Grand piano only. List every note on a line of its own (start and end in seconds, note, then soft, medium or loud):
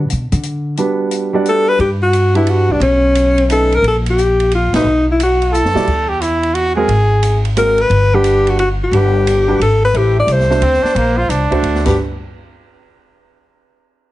0.78 1.29 G3 soft
0.78 1.29 B3 soft
0.78 1.30 D4 soft
0.78 1.29 F#4 soft
0.78 1.30 B4 soft
1.33 1.77 G3 medium
1.33 1.77 B3 medium
1.33 1.78 D4 medium
1.33 1.78 F#4 soft
1.33 1.78 D5 medium
2.34 2.79 G3 medium
2.34 2.79 D4 soft
2.34 2.79 F#4 medium
2.34 2.79 B4 medium
3.49 3.69 A3 soft
3.49 3.69 C#4 medium
3.49 3.69 D#4 medium
3.49 3.70 B4 medium
4.74 4.85 A3 medium
4.74 4.85 D#4 medium
4.74 4.85 F#4 soft
4.74 4.85 B4 medium
5.74 5.86 G3 medium
5.74 5.86 E4 medium
5.74 5.86 F#4 medium
5.74 5.86 D5 medium
6.76 6.88 G#3 medium
6.76 6.88 C4 medium
6.76 6.88 F#4 medium
6.76 6.88 A#4 medium
7.56 7.76 G#3 medium
7.56 7.76 C4 medium
7.56 7.77 F#4 medium
7.56 7.77 A#4 medium
8.13 8.56 G3 medium
8.13 8.57 D4 medium
8.13 8.57 B4 medium
8.13 8.57 F#5 medium
8.93 9.44 G3 soft
8.93 9.44 D4 soft
8.93 9.45 B4 medium
8.93 9.45 F#5 soft
9.47 9.58 G3 medium
9.47 9.59 D4 medium
9.47 9.59 F#4 medium
9.47 9.59 B4 medium
9.94 10.45 A3 soft
9.94 10.46 E4 soft
9.94 10.46 G4 soft
9.94 10.46 C5 medium
10.50 10.61 A3 medium
10.50 10.61 D4 medium
10.50 10.61 F#4 medium
10.50 10.61 C5 medium
11.50 11.85 A3 medium
11.50 11.83 D4 medium
11.50 11.84 F#4 medium
11.50 11.86 C5 medium
11.85 11.96 G3 medium
11.85 11.96 D4 medium
11.85 11.96 F#4 medium
11.85 11.96 B4 medium